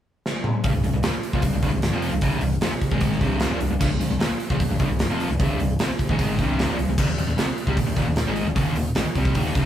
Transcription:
0.26 snare
0.44 mid tom
0.64 fingered electric bass C1, overdriven electric guitar C2 G2, kick, open hi-hat
0.73 fingered electric bass C1, overdriven electric guitar C2 G2
0.84 fingered electric bass C1, overdriven electric guitar C2 G2, open hi-hat
0.94 fingered electric bass C1, overdriven electric guitar C2 G2
1.03 fingered electric bass D#1, overdriven electric guitar D#2 A#2, snare, open hi-hat
1.13 muted overdriven electric guitar stroke, muted fingered electric bass stroke
1.23 open hi-hat
1.33 fingered electric bass A#1, overdriven electric guitar A#2 F3, kick
1.42 fingered electric bass C1, overdriven electric guitar C2 G2, kick, open hi-hat
1.53 fingered electric bass C1, overdriven electric guitar C2 G2
1.62 fingered electric bass C1, overdriven electric guitar C2 G2, kick, open hi-hat
1.72 fingered electric bass C1, overdriven electric guitar C2 G2
1.82 snare, open hi-hat
1.92 fingered electric bass F1, overdriven electric guitar F2 C3 F3
2.02 open hi-hat
2.12 fingered electric bass C1, overdriven electric guitar C2 G2
2.21 fingered electric bass C1, overdriven electric guitar C2 G2 C3, kick, open hi-hat
2.41 fingered electric bass C1, overdriven electric guitar C2 G2, open hi-hat
2.61 fingered electric bass F1, overdriven electric guitar F2 C3, snare, open hi-hat
2.71 muted fingered electric bass stroke, muted overdriven electric guitar stroke
2.82 kick, open hi-hat
2.91 fingered electric bass G#1, overdriven electric guitar G#2 D#3 G#3, kick
3.01 kick, open hi-hat
3.12 snare
3.20 fingered electric bass C1, overdriven electric guitar C2 G2 C3, kick, open hi-hat
3.40 snare, open hi-hat
3.50 fingered electric bass D#1, overdriven electric guitar D#2 A#2
3.61 fingered electric bass C1, overdriven electric guitar C2 G2, open hi-hat
3.71 fingered electric bass C1, overdriven electric guitar C2 G2
3.80 fingered electric bass C1, overdriven electric guitar C2 G2, kick, crash
3.91 fingered electric bass C1, overdriven electric guitar C2 G2
4.00 fingered electric bass C1, overdriven electric guitar C2 G2, open hi-hat
4.10 fingered electric bass C1, overdriven electric guitar C2 G2
4.19 fingered electric bass D#1, overdriven electric guitar D#2 A#2, snare, open hi-hat
4.31 muted fingered electric bass stroke, muted overdriven electric guitar stroke
4.40 open hi-hat
4.50 fingered electric bass A#1, overdriven electric guitar A#2 F3, kick
4.60 fingered electric bass C1, overdriven electric guitar C2 G2, kick, open hi-hat
4.70 fingered electric bass C1, overdriven electric guitar C2 G2
4.79 fingered electric bass C1, overdriven electric guitar C2 G2, kick, open hi-hat
4.90 fingered electric bass C1, overdriven electric guitar C2 G2
4.99 snare, open hi-hat
5.09 fingered electric bass F1, overdriven electric guitar F2 C3 F3
5.20 open hi-hat
5.30 fingered electric bass C1, overdriven electric guitar C2 G2
5.39 fingered electric bass C1, overdriven electric guitar C2 G2 C3, kick, open hi-hat
5.60 fingered electric bass C1, overdriven electric guitar C2 G2, open hi-hat
5.79 fingered electric bass F1, overdriven electric guitar F2 C3, snare, open hi-hat
5.89 muted fingered electric bass stroke, muted overdriven electric guitar stroke
5.99 kick, open hi-hat
6.09 fingered electric bass G#1, overdriven electric guitar G#2 D#3 G#3, kick
6.19 kick, open hi-hat
6.39 fingered electric bass C1, overdriven electric guitar C2 G2 C3, kick, open hi-hat
6.59 snare, open hi-hat
6.69 fingered electric bass D#1, overdriven electric guitar D#2 A#2
6.78 fingered electric bass C1, overdriven electric guitar C2 G2, open hi-hat
6.88 fingered electric bass C1, overdriven electric guitar C2 G2
6.98 fingered electric bass D#1, overdriven electric guitar D#2 A#2, kick, crash
7.07 fingered electric bass D#1, overdriven electric guitar D#2 A#2
7.18 fingered electric bass D#1, overdriven electric guitar D#2 A#2, open hi-hat
7.27 fingered electric bass D#1, overdriven electric guitar D#2 A#2
7.37 fingered electric bass F1, overdriven electric guitar F2 C3, snare, open hi-hat
7.48 muted overdriven electric guitar stroke, muted fingered electric bass stroke
7.58 open hi-hat
7.67 fingered electric bass C2, overdriven electric guitar C3 G3, kick
7.76 fingered electric bass D#1, overdriven electric guitar D#2 A#2, kick, open hi-hat
7.87 fingered electric bass D#1, overdriven electric guitar D#2 A#2
7.96 fingered electric bass D#1, overdriven electric guitar D#2 A#2, kick, open hi-hat
8.08 fingered electric bass D#1, overdriven electric guitar D#2 A#2
8.16 snare, open hi-hat
8.27 fingered electric bass G#1, overdriven electric guitar G#2 D#3 G#3
8.36 open hi-hat
8.46 fingered electric bass D#1, overdriven electric guitar D#2 A#2
8.55 fingered electric bass D#1, overdriven electric guitar D#2 A#2 D#3, kick, open hi-hat
8.76 fingered electric bass D#1, overdriven electric guitar D#2 A#2, open hi-hat
8.95 fingered electric bass G#1, overdriven electric guitar G#2 D#3, snare, open hi-hat
9.06 muted overdriven electric guitar stroke, muted fingered electric bass stroke
9.15 fingered electric bass C2, overdriven electric guitar C3 G3 C4, kick, open hi-hat
9.25 kick
9.35 fingered electric bass D#1, overdriven electric guitar D#2 A#2 D#3, kick, open hi-hat
9.46 snare
9.55 fingered electric bass C1, overdriven electric guitar C2 G2 C3, kick, open hi-hat

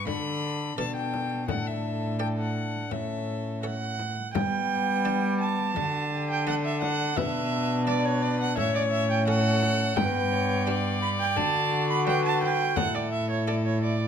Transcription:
0.07 cello D3, harpsichord D3, trombone D4, viola A4, violin B5, frame drum
0.78 harpsichord B2 A4 D5, cello B2, trombone D4, viola A4, violin A5
0.96 violin G5
1.14 frame drum
1.48 cello A2, harpsichord A2, trombone D4, viola A4, violin F#5, frame drum
1.67 violin E5
2.19 harpsichord A4 D5, violin G5
2.38 violin F#5
2.91 harpsichord A2, cello A2, trombone C#4, viola A4, violin E5, frame drum
3.63 harpsichord A4 C#5, viola F#5
3.99 frame drum
4.34 harpsichord G3, cello G3, trombone B3, viola G5, frame drum
5.05 harpsichord D4 D5
5.40 viola A5
5.75 cello D3, harpsichord D3, trombone D4, violin F#4, frame drum
6.12 violin G4
6.30 viola G5
6.47 harpsichord D4 D5, violin A4, viola F#5
6.65 viola E5
6.82 viola F#5, frame drum
7.16 harpsichord B2, cello B2, trombone D4, violin B4, viola E5, frame drum
7.87 harpsichord D4 D5, violin B4, viola D5
8.05 viola C#5
8.22 viola D5
8.41 viola F#5
8.57 harpsichord A2, cello A2, trombone C#4, violin C#5, viola E5, frame drum
8.75 viola D5
8.91 viola E5
9.10 viola G5
9.27 harpsichord C#4 A4, violin A4, viola F#5
9.63 frame drum
9.96 harpsichord G2, cello G2, trombone B3, violin B4, viola G5, frame drum
10.32 violin C#5
10.67 harpsichord D4 G4, violin D5
11.02 viola B5
11.20 viola G5
11.36 harpsichord D3, cello D3, trombone F#4, viola A5, frame drum
11.90 viola B5
12.07 harpsichord F#3 D4, violin B4, viola G5
12.25 viola A5
12.42 viola G5, frame drum
12.76 harpsichord A2, cello A2, trombone E4, violin A4, viola F#5, frame drum
12.94 viola D5
13.12 viola E5
13.30 viola C#5
13.47 harpsichord E4 A4, viola D5
13.65 viola C#5
13.83 viola D5

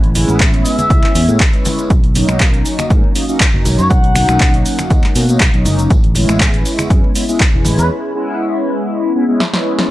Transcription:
Already playing: fingered electric bass A1, analog polysynth G#3 B3 C#4 E4
0.04 closed hi-hat
0.14 analog polysynth G#3 B3 C#4 E4, open hi-hat, tambourine, low conga, shaker
0.28 fingered electric bass A1, closed hi-hat, tambourine, high conga, shaker
0.40 kick, clap, closed hi-hat, tambourine, shaker
0.54 closed hi-hat
0.65 trumpet section E5, open hi-hat, tambourine, shaker
0.78 closed hi-hat, tambourine, low conga, shaker
0.90 fingered electric bass C#2, kick, closed hi-hat, tambourine, shaker
1.04 clap, high conga
1.15 fingered electric bass E2, analog polysynth G#3 B3 C#4 E4, open hi-hat, tambourine, shaker
1.28 fingered electric bass A2, analog polysynth G#3 B3 C#4 E4, closed hi-hat, tambourine, shaker
1.40 kick, clap, closed hi-hat, shaker
1.53 analog polysynth G#3 B3 C#4 E4, closed hi-hat
1.65 open hi-hat, tambourine, high conga, low conga, shaker
1.79 closed hi-hat, tambourine, shaker
1.90 fingered electric bass B1, kick, closed hi-hat, shaker
2.04 closed hi-hat
2.14 analog polysynth F#3 A#3 C#4 D#4, open hi-hat, tambourine, low conga, shaker
2.27 fingered electric bass B1, finger snap, closed hi-hat, tambourine, high conga, shaker
2.40 kick, clap, closed hi-hat, shaker
2.54 closed hi-hat
2.65 open hi-hat, tambourine, shaker
2.79 finger snap, closed hi-hat, tambourine, low conga, shaker
2.90 fingered electric bass G#2, kick, closed hi-hat, tambourine, shaker
3.04 high conga
3.15 analog polysynth F#3 A#3 C#4 D#4, open hi-hat, tambourine, shaker
3.28 analog polysynth F#3 A#3 C#4 D#4, tambourine, shaker
3.40 kick, clap, closed hi-hat, shaker
3.53 fingered electric bass F#1, analog polysynth F#3 A#3 C#4 D#4
3.65 fingered electric bass B1, open hi-hat, tambourine, high conga, low conga, shaker
3.79 fingered electric bass F#2, trumpet section C#5, closed hi-hat, tambourine, shaker
3.90 fingered electric bass B1, trumpet section F#5, kick, closed hi-hat, tambourine, shaker
4.04 closed hi-hat
4.15 analog polysynth F#3 A#3 C#4 D#4, finger snap, open hi-hat, tambourine, low conga, shaker
4.29 fingered electric bass B1, finger snap, closed hi-hat, tambourine, high conga, shaker
4.40 kick, clap, closed hi-hat, shaker
4.54 closed hi-hat
4.65 open hi-hat, tambourine, shaker
4.79 finger snap, closed hi-hat, tambourine, low conga, shaker
4.90 fingered electric bass D#2, kick, closed hi-hat, tambourine, shaker
5.04 clap, high conga
5.15 fingered electric bass B2, analog polysynth F#3 A#3 C#4 D#4, open hi-hat, tambourine, shaker
5.29 analog polysynth F#3 A#3 C#4 D#4, closed hi-hat, tambourine, shaker
5.40 fingered electric bass B1, kick, clap, closed hi-hat, shaker
5.54 fingered electric bass B1, analog polysynth F#3 A#3 C#4 D#4, closed hi-hat
5.65 fingered electric bass F#1, open hi-hat, tambourine, high conga, low conga, shaker
5.79 closed hi-hat, tambourine, shaker
5.90 fingered electric bass A1, kick, closed hi-hat, tambourine, shaker
6.04 closed hi-hat
6.15 analog polysynth G#3 B3 C#4 E4, open hi-hat, tambourine, low conga, shaker
6.29 fingered electric bass A1, finger snap, tambourine, high conga, shaker
6.40 kick, clap, closed hi-hat, shaker
6.54 closed hi-hat
6.65 open hi-hat, tambourine, shaker
6.79 finger snap, closed hi-hat, tambourine, low conga, shaker
6.90 fingered electric bass F#2, kick, closed hi-hat, shaker
7.04 high conga
7.15 analog polysynth G#3 B3 C#4 E4, open hi-hat, tambourine, shaker
7.28 analog polysynth G#3 B3 C#4 E4, tambourine, shaker
7.40 kick, clap, closed hi-hat, shaker
7.53 fingered electric bass E1, analog polysynth G#3 B3 C#4 E4
7.65 fingered electric bass A1, open hi-hat, tambourine, high conga, low conga, shaker
7.77 fingered electric bass E2, trumpet section B4, closed hi-hat, tambourine, shaker
8.15 analog polysynth G#3 B3 C#4 E4
9.15 analog polysynth G#3 B3 C#4 E4
9.28 analog polysynth G#3 B3 C#4 E4
9.40 snare
9.53 analog polysynth G#3 B3 C#4 E4, snare
9.79 snare

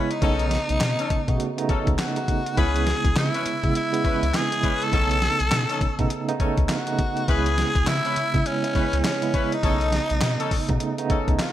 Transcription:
Already playing: tine electric piano C#3 G#3 B3 E4, tenor saxophone C#4, horn section C#4 E4 B4
0.11 tenor saxophone D#4, closed hi-hat
0.21 analog synth bass B1, tine electric piano C#3 A3 B3 D#4, horn section C#4 D#4 A4, kick, closed hi-hat
0.39 closed hi-hat
0.51 snare, closed hi-hat
0.69 analog synth bass B1, closed hi-hat
0.80 analog synth bass B2, snare, clap, closed hi-hat
0.99 horn section C#4 D#4 A4, closed hi-hat
1.10 analog synth bass B2, kick, closed hi-hat
1.28 analog synth bass B2, tine electric piano C#3 A3 B3 F#4, kick, closed hi-hat
1.40 closed hi-hat
1.57 tine electric piano C#3 A3 B3 D#4, closed hi-hat
1.69 analog synth bass C#2, horn section C#4 D#4 A4, kick, closed hi-hat
1.87 analog synth bass C#2, kick, closed hi-hat
1.98 tenor saxophone F#4, snare, clap, closed hi-hat
2.16 tine electric piano C#3 A3 B3 D#4, closed hi-hat
2.28 kick, closed hi-hat
2.46 closed hi-hat
2.57 analog synth bass C#2, tine electric piano C#3 G#3 B3 E4, horn section C#4 E4 B4, tenor saxophone G#4, kick, closed hi-hat
2.76 closed hi-hat
2.87 snare, closed hi-hat
3.05 analog synth bass C#2, kick, closed hi-hat
3.16 analog synth bass C#3, tenor saxophone E4, snare, clap, closed hi-hat
3.33 horn section C#4 E4 B4, closed hi-hat
3.46 analog synth bass C#3, closed hi-hat
3.63 tine electric piano C#3 G#3 B3 E4, analog synth bass C#3, kick, closed hi-hat
3.75 tenor saxophone E4, closed hi-hat
3.92 tine electric piano C#3 G#3 B3 E4, closed hi-hat
4.04 analog synth bass C#2, horn section C#4 E4 B4, kick, closed hi-hat
4.23 analog synth bass C#2, closed hi-hat
4.34 tenor saxophone G#4, snare, clap, closed hi-hat
4.51 tine electric piano C#3 G#3 B3 E4, closed hi-hat
4.63 horn section C#4 E4 B4, kick, closed hi-hat
4.82 tenor saxophone A4, closed hi-hat
4.92 analog synth bass B1, tine electric piano C#3 A3 B3 D#4, horn section C#4 D#4 A4, kick, closed hi-hat
5.11 closed hi-hat
5.22 snare, closed hi-hat
5.40 analog synth bass B1, closed hi-hat
5.51 analog synth bass B2, snare, clap, closed hi-hat
5.69 horn section C#4 D#4 A4, closed hi-hat
5.81 analog synth bass B2, kick, closed hi-hat
5.98 analog synth bass B2, tine electric piano C#3 A3 B3 D#4, kick, closed hi-hat
6.10 closed hi-hat
6.28 tine electric piano C#3 A3 B3 D#4, closed hi-hat
6.40 analog synth bass C#2, horn section C#4 D#4 A4, kick, closed hi-hat
6.58 analog synth bass C#2, kick, closed hi-hat
6.69 tenor saxophone F#4, snare, clap, closed hi-hat
6.87 tine electric piano C#3 A3 B3 D#4, closed hi-hat
6.99 kick, closed hi-hat
7.17 closed hi-hat
7.27 analog synth bass C#2, tine electric piano C#3 G#3 B3 E4, horn section C#4 E4 B4, tenor saxophone G#4, kick, closed hi-hat
7.46 closed hi-hat
7.58 snare, closed hi-hat
7.75 analog synth bass C#2, kick, closed hi-hat
7.87 analog synth bass C#3, tenor saxophone E4, snare, clap, closed hi-hat
8.05 horn section C#4 E4 B4, closed hi-hat
8.16 analog synth bass C#3, closed hi-hat
8.33 tine electric piano C#3 G#3 B3 E4, analog synth bass C#3, kick, closed hi-hat
8.46 tenor saxophone C#4, closed hi-hat
8.63 tine electric piano C#3 G#3 B3 E4, closed hi-hat
8.75 analog synth bass C#2, horn section C#4 E4 B4, kick, closed hi-hat
8.93 analog synth bass C#2, closed hi-hat
9.04 tenor saxophone C#4, snare, clap, closed hi-hat
9.22 tine electric piano C#3 G#3 B3 E4, closed hi-hat
9.34 horn section C#4 E4 B4, kick, closed hi-hat
9.52 tenor saxophone D#4, closed hi-hat
9.63 analog synth bass B1, tine electric piano C#3 A3 B3 D#4, horn section C#4 D#4 A4, kick, closed hi-hat
9.81 closed hi-hat
9.92 snare, closed hi-hat
10.10 analog synth bass B1, closed hi-hat
10.21 analog synth bass B2, snare, clap, closed hi-hat
10.39 horn section C#4 D#4 A4, closed hi-hat
10.51 analog synth bass B2, kick, open hi-hat
10.69 analog synth bass B2, tine electric piano C#3 A3 B3 D#4, kick, closed hi-hat
10.80 closed hi-hat
10.98 tine electric piano C#3 A3 B3 D#4, closed hi-hat
11.10 analog synth bass C#2, horn section C#4 D#4 A4, kick, closed hi-hat
11.28 analog synth bass C#2, kick, closed hi-hat
11.39 tenor saxophone F#4, snare, clap, closed hi-hat

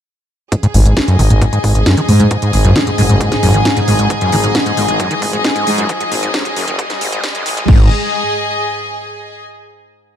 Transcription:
0.52 acid bass G#2, synth drone G#2, string section G#4, kick, closed hi-hat, riser
0.63 acid bass G#2, closed hi-hat
0.74 fm bass G#1, acid bass G#2, string section G#5, open hi-hat
0.86 acid bass G#2, closed hi-hat
0.97 acid bass G#1, string section D#5, kick, snare, closed hi-hat
1.08 acid bass F#2, closed hi-hat
1.19 fm bass G#1, acid bass D#3, open hi-hat
1.30 fm bass G#1, acid bass G#2, closed hi-hat
1.41 acid bass G#2, kick, closed hi-hat
1.53 acid bass G#2, closed hi-hat
1.64 fm bass G#1, acid bass G#2, kick, open hi-hat
1.75 acid bass G#1, closed hi-hat
1.86 acid bass F#2, kick, snare, closed hi-hat
1.97 acid bass D#3, closed hi-hat
2.09 acid bass G#2, fm bass G#2, open hi-hat
2.20 acid bass G#2, closed hi-hat
2.31 acid bass G#2, kick, closed hi-hat
2.42 acid bass G#2, closed hi-hat
2.53 acid bass G#1, fm bass G#1, open hi-hat
2.65 acid bass F#2, closed hi-hat
2.76 acid bass D#3, kick, snare, closed hi-hat
2.87 acid bass G#2, closed hi-hat
2.98 fm bass F#1, acid bass G#2, open hi-hat
3.09 fm bass F#1, acid bass G#2, closed hi-hat
3.21 acid bass G#2, kick, closed hi-hat
3.32 acid bass G#1, snare, closed hi-hat
3.43 fm bass G#1, acid bass F#2, open hi-hat
3.54 acid bass D#3, closed hi-hat
3.65 acid bass G#2, kick, snare, closed hi-hat
3.77 acid bass G#2, closed hi-hat
3.88 fm bass G#1, acid bass G#2, open hi-hat
3.99 acid bass G#2, closed hi-hat
4.10 acid bass G#1, kick, closed hi-hat
4.21 acid bass F#2, closed hi-hat
4.32 fm bass G#1, acid bass D#3, open hi-hat
4.44 acid bass G#2, closed hi-hat
4.55 acid bass G#2, kick, snare, closed hi-hat
4.66 acid bass G#2, closed hi-hat
4.77 fm bass G#1, acid bass G#2, open hi-hat
4.88 acid bass G#1, fm bass G#1, closed hi-hat
5.00 acid bass F#2, kick, closed hi-hat
5.11 acid bass D#3, closed hi-hat
5.22 fm bass G#1, acid bass G#2, kick, open hi-hat
5.33 acid bass G#2, closed hi-hat
5.44 acid bass G#2, kick, snare, closed hi-hat
5.56 acid bass G#2, closed hi-hat
5.67 acid bass G#1, fm bass G#2, open hi-hat
5.78 acid bass F#2, closed hi-hat
5.89 acid bass D#3, kick, closed hi-hat
6.00 acid bass G#2, closed hi-hat
6.12 fm bass G#1, acid bass G#2, open hi-hat
6.23 acid bass G#2, closed hi-hat
6.34 acid bass G#2, kick, snare, closed hi-hat
6.45 acid bass G#1, closed hi-hat
6.56 fm bass F#1, acid bass F#2, open hi-hat
6.68 fm bass F#1, acid bass D#3, closed hi-hat
6.79 acid bass G#2, kick, closed hi-hat
6.90 acid bass G#2, snare, closed hi-hat
7.01 fm bass G#1, acid bass G#2, open hi-hat
7.12 acid bass G#2, closed hi-hat
7.24 acid bass G#1, kick, snare, closed hi-hat
7.35 acid bass F#2, closed hi-hat
7.46 fm bass A1, acid bass D#3, open hi-hat
7.57 acid bass G#2, closed hi-hat
7.68 fm bass G#1, acid bass G#2, string section G#4, kick, crash
7.75 string section D#5
7.82 string section G#5

